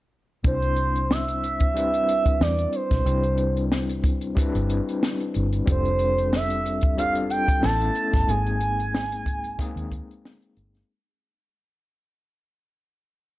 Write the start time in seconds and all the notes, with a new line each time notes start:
0.44 C2 G3 C4 D4 E4 C5, kick, closed hi-hat
0.48 C5
0.62 closed hi-hat
0.76 closed hi-hat
0.96 closed hi-hat
1.11 E5, snare
1.28 closed hi-hat
1.44 closed hi-hat
1.60 kick, closed hi-hat
1.74 G3 C4 D4 E4 B4 E5, closed hi-hat
1.94 closed hi-hat
2.09 closed hi-hat
2.26 kick, closed hi-hat
2.41 E2 D5, snare
2.59 closed hi-hat
2.73 C5, closed hi-hat
2.91 B1, kick, snare, closed hi-hat
3.04 C2 G3 C4 D4 E4 C5, closed hi-hat
3.23 closed hi-hat
3.38 closed hi-hat
3.57 closed hi-hat
3.72 snare
3.89 closed hi-hat
4.04 kick, closed hi-hat
4.21 closed hi-hat
4.35 G3 C4 D4 E4 B4, muted fingered electric bass stroke, kick, closed hi-hat
4.55 G1, closed hi-hat
4.70 closed hi-hat
4.89 closed hi-hat
5.03 snare
5.20 closed hi-hat
5.34 G1, closed hi-hat
5.53 closed hi-hat
5.65 F1 G3 C4 D4 F4 A4, kick, closed hi-hat
5.71 C5
5.85 closed hi-hat
5.99 closed hi-hat
6.18 closed hi-hat
6.33 E5, snare
6.50 closed hi-hat
6.66 closed hi-hat
6.81 kick, closed hi-hat
6.97 G3 C4 D4 F4 A4 F5, closed hi-hat
7.15 closed hi-hat
7.30 G5, closed hi-hat
7.48 kick, closed hi-hat
7.61 A1 A3 B3 C#4 E4 A4 A5, snare
7.81 closed hi-hat
7.95 closed hi-hat
8.14 G1, kick, snare, closed hi-hat
8.27 G#1 G#3 A#3 C4 D#4 G#4 G#5, closed hi-hat
8.47 closed hi-hat
8.61 closed hi-hat
8.80 closed hi-hat
8.95 snare
9.12 closed hi-hat
9.26 kick, closed hi-hat
9.44 closed hi-hat
9.58 G#3 A#3 C4 D#4 G#4, muted fingered electric bass stroke, kick, closed hi-hat
9.76 D#2, closed hi-hat
9.92 kick, closed hi-hat
10.11 closed hi-hat
10.25 snare
10.42 closed hi-hat
10.57 G1, closed hi-hat
10.75 snare, closed hi-hat